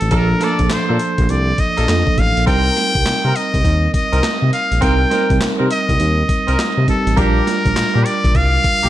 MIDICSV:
0, 0, Header, 1, 6, 480
1, 0, Start_track
1, 0, Tempo, 588235
1, 96, Time_signature, 4, 2, 24, 8
1, 7256, End_track
2, 0, Start_track
2, 0, Title_t, "Muted trumpet"
2, 0, Program_c, 0, 59
2, 0, Note_on_c, 0, 69, 86
2, 120, Note_on_c, 0, 70, 96
2, 132, Note_off_c, 0, 69, 0
2, 357, Note_on_c, 0, 74, 89
2, 369, Note_off_c, 0, 70, 0
2, 587, Note_off_c, 0, 74, 0
2, 593, Note_on_c, 0, 72, 84
2, 1063, Note_on_c, 0, 74, 95
2, 1075, Note_off_c, 0, 72, 0
2, 1302, Note_on_c, 0, 75, 105
2, 1315, Note_off_c, 0, 74, 0
2, 1786, Note_on_c, 0, 77, 102
2, 1798, Note_off_c, 0, 75, 0
2, 2015, Note_off_c, 0, 77, 0
2, 2020, Note_on_c, 0, 79, 126
2, 2737, Note_on_c, 0, 75, 105
2, 2749, Note_off_c, 0, 79, 0
2, 3213, Note_off_c, 0, 75, 0
2, 3218, Note_on_c, 0, 75, 98
2, 3664, Note_off_c, 0, 75, 0
2, 3699, Note_on_c, 0, 77, 100
2, 3937, Note_on_c, 0, 79, 96
2, 3949, Note_off_c, 0, 77, 0
2, 4442, Note_off_c, 0, 79, 0
2, 4661, Note_on_c, 0, 75, 98
2, 5586, Note_off_c, 0, 75, 0
2, 5623, Note_on_c, 0, 69, 84
2, 5858, Note_on_c, 0, 70, 100
2, 5870, Note_off_c, 0, 69, 0
2, 6572, Note_on_c, 0, 74, 101
2, 6585, Note_off_c, 0, 70, 0
2, 6819, Note_on_c, 0, 77, 121
2, 6831, Note_off_c, 0, 74, 0
2, 7256, Note_off_c, 0, 77, 0
2, 7256, End_track
3, 0, Start_track
3, 0, Title_t, "Horn section"
3, 0, Program_c, 1, 61
3, 92, Note_on_c, 1, 58, 97
3, 94, Note_on_c, 1, 62, 90
3, 98, Note_on_c, 1, 69, 102
3, 233, Note_off_c, 1, 58, 0
3, 234, Note_off_c, 1, 62, 0
3, 236, Note_off_c, 1, 69, 0
3, 333, Note_on_c, 1, 58, 75
3, 335, Note_on_c, 1, 62, 62
3, 338, Note_on_c, 1, 69, 80
3, 474, Note_off_c, 1, 58, 0
3, 475, Note_off_c, 1, 62, 0
3, 476, Note_off_c, 1, 69, 0
3, 726, Note_on_c, 1, 58, 70
3, 729, Note_on_c, 1, 62, 65
3, 731, Note_on_c, 1, 69, 77
3, 807, Note_off_c, 1, 58, 0
3, 808, Note_off_c, 1, 62, 0
3, 809, Note_off_c, 1, 69, 0
3, 1445, Note_on_c, 1, 58, 76
3, 1448, Note_on_c, 1, 62, 69
3, 1449, Note_on_c, 1, 69, 79
3, 1526, Note_off_c, 1, 58, 0
3, 1528, Note_off_c, 1, 62, 0
3, 1528, Note_off_c, 1, 69, 0
3, 2012, Note_on_c, 1, 60, 92
3, 2013, Note_on_c, 1, 63, 84
3, 2016, Note_on_c, 1, 70, 99
3, 2240, Note_off_c, 1, 60, 0
3, 2241, Note_off_c, 1, 63, 0
3, 2242, Note_off_c, 1, 70, 0
3, 2643, Note_on_c, 1, 60, 71
3, 2646, Note_on_c, 1, 63, 66
3, 2648, Note_on_c, 1, 70, 83
3, 2725, Note_off_c, 1, 60, 0
3, 2727, Note_off_c, 1, 63, 0
3, 2728, Note_off_c, 1, 70, 0
3, 3366, Note_on_c, 1, 60, 73
3, 3366, Note_on_c, 1, 63, 62
3, 3370, Note_on_c, 1, 70, 85
3, 3447, Note_off_c, 1, 60, 0
3, 3447, Note_off_c, 1, 63, 0
3, 3449, Note_off_c, 1, 70, 0
3, 3927, Note_on_c, 1, 60, 94
3, 3930, Note_on_c, 1, 63, 81
3, 3932, Note_on_c, 1, 70, 98
3, 4071, Note_off_c, 1, 60, 0
3, 4072, Note_off_c, 1, 63, 0
3, 4073, Note_off_c, 1, 70, 0
3, 4167, Note_on_c, 1, 60, 73
3, 4168, Note_on_c, 1, 63, 70
3, 4172, Note_on_c, 1, 70, 83
3, 4310, Note_off_c, 1, 60, 0
3, 4311, Note_off_c, 1, 63, 0
3, 4313, Note_off_c, 1, 70, 0
3, 4558, Note_on_c, 1, 60, 73
3, 4560, Note_on_c, 1, 63, 71
3, 4563, Note_on_c, 1, 70, 79
3, 4642, Note_off_c, 1, 60, 0
3, 4644, Note_off_c, 1, 63, 0
3, 4645, Note_off_c, 1, 70, 0
3, 5280, Note_on_c, 1, 60, 73
3, 5284, Note_on_c, 1, 63, 69
3, 5286, Note_on_c, 1, 70, 87
3, 5364, Note_off_c, 1, 60, 0
3, 5365, Note_off_c, 1, 63, 0
3, 5367, Note_off_c, 1, 70, 0
3, 5849, Note_on_c, 1, 58, 96
3, 5852, Note_on_c, 1, 62, 91
3, 5854, Note_on_c, 1, 67, 107
3, 6079, Note_off_c, 1, 58, 0
3, 6080, Note_off_c, 1, 62, 0
3, 6081, Note_off_c, 1, 67, 0
3, 6482, Note_on_c, 1, 58, 74
3, 6484, Note_on_c, 1, 62, 67
3, 6486, Note_on_c, 1, 67, 78
3, 6565, Note_off_c, 1, 58, 0
3, 6566, Note_off_c, 1, 62, 0
3, 6567, Note_off_c, 1, 67, 0
3, 7203, Note_on_c, 1, 58, 80
3, 7206, Note_on_c, 1, 62, 67
3, 7209, Note_on_c, 1, 67, 82
3, 7256, Note_off_c, 1, 58, 0
3, 7256, Note_off_c, 1, 62, 0
3, 7256, Note_off_c, 1, 67, 0
3, 7256, End_track
4, 0, Start_track
4, 0, Title_t, "Tine electric piano"
4, 0, Program_c, 2, 4
4, 0, Control_c, 2, 64, 127
4, 88, Note_on_c, 2, 53, 63
4, 96, Note_on_c, 2, 58, 58
4, 103, Note_on_c, 2, 62, 55
4, 110, Note_on_c, 2, 69, 64
4, 1503, Note_off_c, 2, 53, 0
4, 1507, Note_off_c, 2, 58, 0
4, 1511, Note_off_c, 2, 62, 0
4, 1514, Note_off_c, 2, 69, 0
4, 1537, Note_on_c, 2, 53, 49
4, 1541, Note_on_c, 2, 58, 42
4, 1544, Note_on_c, 2, 62, 47
4, 1547, Note_on_c, 2, 69, 52
4, 2013, Note_on_c, 2, 55, 58
4, 2016, Note_off_c, 2, 53, 0
4, 2018, Note_off_c, 2, 58, 0
4, 2019, Note_on_c, 2, 60, 53
4, 2020, Note_off_c, 2, 62, 0
4, 2022, Note_off_c, 2, 69, 0
4, 2025, Note_on_c, 2, 63, 57
4, 2028, Control_c, 2, 64, 0
4, 2033, Note_on_c, 2, 70, 66
4, 2147, Control_c, 2, 64, 127
4, 3902, Note_off_c, 2, 55, 0
4, 3905, Note_off_c, 2, 60, 0
4, 3908, Note_off_c, 2, 63, 0
4, 3912, Note_off_c, 2, 70, 0
4, 3932, Note_on_c, 2, 55, 60
4, 3938, Note_on_c, 2, 60, 59
4, 3947, Note_on_c, 2, 63, 57
4, 3955, Note_on_c, 2, 70, 67
4, 5582, Note_off_c, 2, 55, 0
4, 5585, Note_off_c, 2, 60, 0
4, 5589, Note_off_c, 2, 63, 0
4, 5593, Note_off_c, 2, 70, 0
4, 5614, Note_on_c, 2, 55, 52
4, 5618, Note_on_c, 2, 60, 47
4, 5621, Note_on_c, 2, 63, 45
4, 5623, Note_on_c, 2, 67, 54
4, 5840, Note_off_c, 2, 55, 0
4, 5850, Note_on_c, 2, 55, 63
4, 5854, Note_on_c, 2, 62, 55
4, 5857, Note_off_c, 2, 60, 0
4, 5859, Note_off_c, 2, 63, 0
4, 5860, Note_off_c, 2, 67, 0
4, 5861, Note_on_c, 2, 65, 58
4, 5866, Control_c, 2, 64, 0
4, 5867, Note_on_c, 2, 70, 68
4, 5986, Control_c, 2, 64, 127
4, 7256, Note_off_c, 2, 55, 0
4, 7256, Note_off_c, 2, 62, 0
4, 7256, Note_off_c, 2, 65, 0
4, 7256, Note_off_c, 2, 70, 0
4, 7256, End_track
5, 0, Start_track
5, 0, Title_t, "Analog synth bass"
5, 0, Program_c, 3, 38
5, 11, Note_on_c, 3, 33, 81
5, 79, Note_off_c, 3, 33, 0
5, 95, Note_on_c, 3, 34, 110
5, 285, Note_off_c, 3, 34, 0
5, 487, Note_on_c, 3, 34, 94
5, 557, Note_off_c, 3, 34, 0
5, 579, Note_on_c, 3, 46, 45
5, 639, Note_off_c, 3, 46, 0
5, 731, Note_on_c, 3, 46, 103
5, 799, Note_off_c, 3, 46, 0
5, 969, Note_on_c, 3, 34, 92
5, 1038, Note_off_c, 3, 34, 0
5, 1058, Note_on_c, 3, 36, 98
5, 1247, Note_off_c, 3, 36, 0
5, 1453, Note_on_c, 3, 34, 82
5, 1520, Note_off_c, 3, 34, 0
5, 1538, Note_on_c, 3, 41, 86
5, 1658, Note_off_c, 3, 41, 0
5, 1779, Note_on_c, 3, 33, 82
5, 1899, Note_off_c, 3, 33, 0
5, 1933, Note_on_c, 3, 34, 79
5, 2000, Note_off_c, 3, 34, 0
5, 2018, Note_on_c, 3, 36, 98
5, 2207, Note_off_c, 3, 36, 0
5, 2411, Note_on_c, 3, 36, 93
5, 2479, Note_off_c, 3, 36, 0
5, 2497, Note_on_c, 3, 48, 48
5, 2558, Note_off_c, 3, 48, 0
5, 2647, Note_on_c, 3, 48, 96
5, 2717, Note_off_c, 3, 48, 0
5, 2890, Note_on_c, 3, 36, 82
5, 2958, Note_off_c, 3, 36, 0
5, 2976, Note_on_c, 3, 39, 90
5, 3166, Note_off_c, 3, 39, 0
5, 3368, Note_on_c, 3, 36, 89
5, 3437, Note_off_c, 3, 36, 0
5, 3608, Note_on_c, 3, 48, 92
5, 3677, Note_off_c, 3, 48, 0
5, 3847, Note_on_c, 3, 34, 92
5, 3917, Note_off_c, 3, 34, 0
5, 3934, Note_on_c, 3, 36, 104
5, 4124, Note_off_c, 3, 36, 0
5, 4328, Note_on_c, 3, 36, 88
5, 4397, Note_off_c, 3, 36, 0
5, 4418, Note_on_c, 3, 48, 47
5, 4479, Note_off_c, 3, 48, 0
5, 4570, Note_on_c, 3, 48, 88
5, 4638, Note_off_c, 3, 48, 0
5, 4809, Note_on_c, 3, 36, 98
5, 4878, Note_off_c, 3, 36, 0
5, 4896, Note_on_c, 3, 39, 101
5, 5086, Note_off_c, 3, 39, 0
5, 5288, Note_on_c, 3, 36, 79
5, 5357, Note_off_c, 3, 36, 0
5, 5528, Note_on_c, 3, 48, 85
5, 5597, Note_off_c, 3, 48, 0
5, 5765, Note_on_c, 3, 33, 76
5, 5835, Note_off_c, 3, 33, 0
5, 5856, Note_on_c, 3, 34, 109
5, 6045, Note_off_c, 3, 34, 0
5, 6250, Note_on_c, 3, 34, 85
5, 6318, Note_off_c, 3, 34, 0
5, 6338, Note_on_c, 3, 46, 47
5, 6398, Note_off_c, 3, 46, 0
5, 6490, Note_on_c, 3, 46, 100
5, 6558, Note_off_c, 3, 46, 0
5, 6729, Note_on_c, 3, 34, 88
5, 6798, Note_off_c, 3, 34, 0
5, 6814, Note_on_c, 3, 36, 93
5, 7005, Note_off_c, 3, 36, 0
5, 7212, Note_on_c, 3, 34, 88
5, 7256, Note_off_c, 3, 34, 0
5, 7256, End_track
6, 0, Start_track
6, 0, Title_t, "Drums"
6, 6, Note_on_c, 9, 42, 45
6, 87, Note_off_c, 9, 42, 0
6, 89, Note_on_c, 9, 42, 78
6, 93, Note_on_c, 9, 36, 102
6, 171, Note_off_c, 9, 42, 0
6, 174, Note_off_c, 9, 36, 0
6, 331, Note_on_c, 9, 38, 64
6, 333, Note_on_c, 9, 42, 75
6, 412, Note_off_c, 9, 38, 0
6, 415, Note_off_c, 9, 42, 0
6, 481, Note_on_c, 9, 42, 51
6, 486, Note_on_c, 9, 36, 95
6, 563, Note_off_c, 9, 42, 0
6, 567, Note_off_c, 9, 36, 0
6, 568, Note_on_c, 9, 38, 110
6, 568, Note_on_c, 9, 42, 77
6, 573, Note_on_c, 9, 39, 85
6, 650, Note_off_c, 9, 38, 0
6, 650, Note_off_c, 9, 42, 0
6, 654, Note_off_c, 9, 39, 0
6, 812, Note_on_c, 9, 42, 66
6, 893, Note_off_c, 9, 42, 0
6, 964, Note_on_c, 9, 42, 56
6, 966, Note_on_c, 9, 36, 91
6, 1046, Note_off_c, 9, 42, 0
6, 1048, Note_off_c, 9, 36, 0
6, 1052, Note_on_c, 9, 42, 60
6, 1134, Note_off_c, 9, 42, 0
6, 1291, Note_on_c, 9, 42, 67
6, 1293, Note_on_c, 9, 36, 82
6, 1372, Note_off_c, 9, 42, 0
6, 1375, Note_off_c, 9, 36, 0
6, 1448, Note_on_c, 9, 42, 46
6, 1530, Note_off_c, 9, 42, 0
6, 1537, Note_on_c, 9, 38, 104
6, 1538, Note_on_c, 9, 42, 69
6, 1541, Note_on_c, 9, 39, 85
6, 1618, Note_off_c, 9, 38, 0
6, 1619, Note_off_c, 9, 42, 0
6, 1623, Note_off_c, 9, 39, 0
6, 1688, Note_on_c, 9, 36, 88
6, 1770, Note_off_c, 9, 36, 0
6, 1776, Note_on_c, 9, 36, 75
6, 1777, Note_on_c, 9, 42, 60
6, 1858, Note_off_c, 9, 36, 0
6, 1858, Note_off_c, 9, 42, 0
6, 1934, Note_on_c, 9, 42, 48
6, 2016, Note_off_c, 9, 42, 0
6, 2017, Note_on_c, 9, 36, 110
6, 2020, Note_on_c, 9, 42, 75
6, 2098, Note_off_c, 9, 36, 0
6, 2101, Note_off_c, 9, 42, 0
6, 2258, Note_on_c, 9, 38, 62
6, 2260, Note_on_c, 9, 42, 75
6, 2340, Note_off_c, 9, 38, 0
6, 2342, Note_off_c, 9, 42, 0
6, 2409, Note_on_c, 9, 36, 96
6, 2409, Note_on_c, 9, 42, 56
6, 2490, Note_off_c, 9, 42, 0
6, 2491, Note_off_c, 9, 36, 0
6, 2495, Note_on_c, 9, 38, 101
6, 2495, Note_on_c, 9, 42, 77
6, 2499, Note_on_c, 9, 39, 86
6, 2576, Note_off_c, 9, 38, 0
6, 2576, Note_off_c, 9, 42, 0
6, 2581, Note_off_c, 9, 39, 0
6, 2739, Note_on_c, 9, 42, 68
6, 2820, Note_off_c, 9, 42, 0
6, 2889, Note_on_c, 9, 36, 96
6, 2892, Note_on_c, 9, 42, 56
6, 2970, Note_off_c, 9, 36, 0
6, 2974, Note_off_c, 9, 42, 0
6, 2975, Note_on_c, 9, 36, 95
6, 2978, Note_on_c, 9, 42, 57
6, 3056, Note_off_c, 9, 36, 0
6, 3059, Note_off_c, 9, 42, 0
6, 3214, Note_on_c, 9, 36, 93
6, 3216, Note_on_c, 9, 42, 72
6, 3296, Note_off_c, 9, 36, 0
6, 3297, Note_off_c, 9, 42, 0
6, 3369, Note_on_c, 9, 42, 47
6, 3451, Note_off_c, 9, 42, 0
6, 3453, Note_on_c, 9, 38, 108
6, 3454, Note_on_c, 9, 42, 74
6, 3458, Note_on_c, 9, 39, 87
6, 3535, Note_off_c, 9, 38, 0
6, 3536, Note_off_c, 9, 42, 0
6, 3539, Note_off_c, 9, 39, 0
6, 3696, Note_on_c, 9, 42, 57
6, 3778, Note_off_c, 9, 42, 0
6, 3849, Note_on_c, 9, 42, 49
6, 3931, Note_off_c, 9, 42, 0
6, 3932, Note_on_c, 9, 42, 78
6, 3933, Note_on_c, 9, 36, 109
6, 4014, Note_off_c, 9, 42, 0
6, 4015, Note_off_c, 9, 36, 0
6, 4171, Note_on_c, 9, 38, 58
6, 4173, Note_on_c, 9, 42, 71
6, 4253, Note_off_c, 9, 38, 0
6, 4255, Note_off_c, 9, 42, 0
6, 4327, Note_on_c, 9, 36, 89
6, 4327, Note_on_c, 9, 42, 50
6, 4408, Note_off_c, 9, 36, 0
6, 4409, Note_off_c, 9, 42, 0
6, 4412, Note_on_c, 9, 38, 108
6, 4412, Note_on_c, 9, 42, 77
6, 4417, Note_on_c, 9, 39, 88
6, 4494, Note_off_c, 9, 38, 0
6, 4494, Note_off_c, 9, 42, 0
6, 4498, Note_off_c, 9, 39, 0
6, 4656, Note_on_c, 9, 42, 74
6, 4737, Note_off_c, 9, 42, 0
6, 4807, Note_on_c, 9, 36, 95
6, 4810, Note_on_c, 9, 42, 52
6, 4888, Note_off_c, 9, 36, 0
6, 4892, Note_off_c, 9, 42, 0
6, 4894, Note_on_c, 9, 42, 61
6, 4975, Note_off_c, 9, 42, 0
6, 5133, Note_on_c, 9, 36, 91
6, 5133, Note_on_c, 9, 42, 71
6, 5214, Note_off_c, 9, 36, 0
6, 5214, Note_off_c, 9, 42, 0
6, 5288, Note_on_c, 9, 42, 48
6, 5370, Note_off_c, 9, 42, 0
6, 5376, Note_on_c, 9, 38, 113
6, 5377, Note_on_c, 9, 42, 72
6, 5381, Note_on_c, 9, 39, 86
6, 5458, Note_off_c, 9, 38, 0
6, 5459, Note_off_c, 9, 42, 0
6, 5463, Note_off_c, 9, 39, 0
6, 5614, Note_on_c, 9, 36, 72
6, 5614, Note_on_c, 9, 42, 64
6, 5696, Note_off_c, 9, 36, 0
6, 5696, Note_off_c, 9, 42, 0
6, 5769, Note_on_c, 9, 42, 46
6, 5850, Note_off_c, 9, 42, 0
6, 5853, Note_on_c, 9, 36, 111
6, 5855, Note_on_c, 9, 42, 73
6, 5935, Note_off_c, 9, 36, 0
6, 5936, Note_off_c, 9, 42, 0
6, 6097, Note_on_c, 9, 38, 62
6, 6100, Note_on_c, 9, 42, 73
6, 6179, Note_off_c, 9, 38, 0
6, 6181, Note_off_c, 9, 42, 0
6, 6247, Note_on_c, 9, 36, 94
6, 6247, Note_on_c, 9, 42, 57
6, 6329, Note_off_c, 9, 36, 0
6, 6329, Note_off_c, 9, 42, 0
6, 6333, Note_on_c, 9, 38, 112
6, 6333, Note_on_c, 9, 42, 77
6, 6338, Note_on_c, 9, 39, 87
6, 6415, Note_off_c, 9, 38, 0
6, 6415, Note_off_c, 9, 42, 0
6, 6420, Note_off_c, 9, 39, 0
6, 6575, Note_on_c, 9, 42, 73
6, 6656, Note_off_c, 9, 42, 0
6, 6727, Note_on_c, 9, 36, 99
6, 6730, Note_on_c, 9, 42, 54
6, 6809, Note_off_c, 9, 36, 0
6, 6812, Note_off_c, 9, 42, 0
6, 6813, Note_on_c, 9, 36, 101
6, 6813, Note_on_c, 9, 42, 57
6, 6894, Note_off_c, 9, 36, 0
6, 6894, Note_off_c, 9, 42, 0
6, 7053, Note_on_c, 9, 36, 89
6, 7053, Note_on_c, 9, 42, 71
6, 7134, Note_off_c, 9, 42, 0
6, 7135, Note_off_c, 9, 36, 0
6, 7207, Note_on_c, 9, 42, 47
6, 7256, Note_off_c, 9, 42, 0
6, 7256, End_track
0, 0, End_of_file